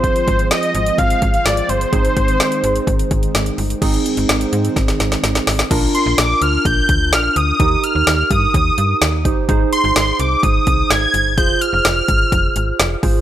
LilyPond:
<<
  \new Staff \with { instrumentName = "Analog synth lead" } { \time 4/4 \key aes \lydian \tempo 4 = 127 c''4 ees''8 ees''8 f''8. f''16 d''8 c''8~ | c''2. r4 | r1 | r8 c'''8 d'''8 f'''8 g'''4 f'''8 ees'''8~ |
ees'''8 f'''4 ees'''2 r8 | r8 c'''4 d'''8 ees'''4 aes'''4 | g'''8 f'''2. r8 | }
  \new Staff \with { instrumentName = "Synth keys" } { \time 4/4 \key aes \lydian <c' f' aes'>2.~ <c' f' aes'>8 r8 | <c' ees' aes'>1 | <c' ees' aes'>1 | <d' f' bes'>1 |
<ees' g' bes'>2.~ <ees' g' bes'>8 <ees' g' c''>8 | <ees' aes' c''>1 | <f' aes' c''>2.~ <f' aes' c''>8 <f' aes' c''>8 | }
  \new Staff \with { instrumentName = "Analog synth pad" } { \clef bass \time 4/4 \key aes \lydian << { <aes c'>1~ | <aes c'>1 | <aes c'>1 | r1 |
r1 | r1 | r1 | } \\ { f1 | ees1 | ees1 | r1 |
r1 | r1 | r1 | } >> }
  \new Staff \with { instrumentName = "FM bass" } { \clef bass \time 4/4 \key aes \lydian aes,,8 aes,,8. r16 aes,,8 aes,,8 aes,,8 aes,,8 g,,8 | aes,,8 aes,,8. r16 aes,,8 aes,,8 aes,,8 aes,,8 g,,8 | aes,,8 r16 aes,,16 aes,,8 aes,8 aes,,8 aes,,8 aes,,8 aes,,8 | bes,,8 r16 bes,,16 bes,,8 d,8 bes,,8 d,8 bes,,8 d,8 |
ees,8 r16 ees,16 ees,8 g,8 ees,8 g,8 ees,8 g,,8 | aes,,8 r16 aes,,16 aes,,8 c,8 aes,,8 c,8 aes,,8 g,,8 | f,,8 r16 f,,16 f,,8 aes,,8 f,,8 aes,,8 f,,8 aes,,8 | }
  \new DrumStaff \with { instrumentName = "Drums" } \drummode { \time 4/4 <hh bd>16 hh16 <hh bd>16 hh16 <hh sn>16 hh16 hh16 hh16 <hh bd>16 hh16 <hh bd>16 hh16 <hh sn>16 hh16 hh16 hh16 | <hh bd>16 hh16 <hh bd>16 hh16 <hh sn>16 hh16 hh16 hh16 <hh bd>16 hh16 <hh bd>16 hh16 <hh sn>16 hh16 hho16 hh16 | <cymc hh bd>16 hh16 hh16 hh16 <hh sn>16 hh16 hh16 hh16 <hh bd sn>16 <hh sn>16 <hh sn>16 <hh sn>16 <hh sn>16 <hh sn>16 <hho sn>16 <hh sn>16 | <cymc hh bd>8 hh8 <hh sn>8 hh8 <hh bd>8 <hh bd>8 <hh sn>8 hh8 |
<hh bd>8 hh8 <hh sn>8 <hh bd>8 <hh bd>8 hh8 <hh sn>8 <hh bd>8 | <hh bd>8 hh8 <hh sn>8 hh8 <hh bd>8 <hh bd>8 <hh sn>8 hh8 | <hh bd>8 hh8 <hh sn>8 <hh bd>8 <hh bd>8 hh8 <hh sn>8 <hho bd>8 | }
>>